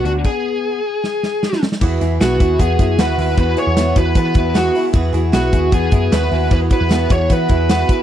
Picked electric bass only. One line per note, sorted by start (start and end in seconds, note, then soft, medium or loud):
0.05 0.22 D2 medium
1.81 1.98 E2 medium
2.01 2.18 E2 medium
2.20 2.40 B1 medium
2.40 2.57 D#2 medium
2.60 2.76 E2 medium
2.79 2.98 F#2 medium
2.98 3.15 D#2 medium
3.18 3.35 D#2 medium
3.37 3.54 E2 medium
3.67 3.92 E2 medium
3.96 4.13 E2 medium
4.15 4.37 E3 medium
4.35 4.68 E2 medium
4.94 5.10 E2 loud
5.13 5.30 E2 loud
5.33 5.50 B1 medium
5.53 5.69 D#2 medium
5.72 5.89 E2 medium
5.92 6.09 F#2 medium
6.11 6.28 D#2 medium
6.31 6.48 D#2 medium
6.51 6.68 E2 medium
6.81 7.06 E2 loud
7.10 7.27 E2 medium
7.30 7.46 E3 loud
7.49 7.83 E2 medium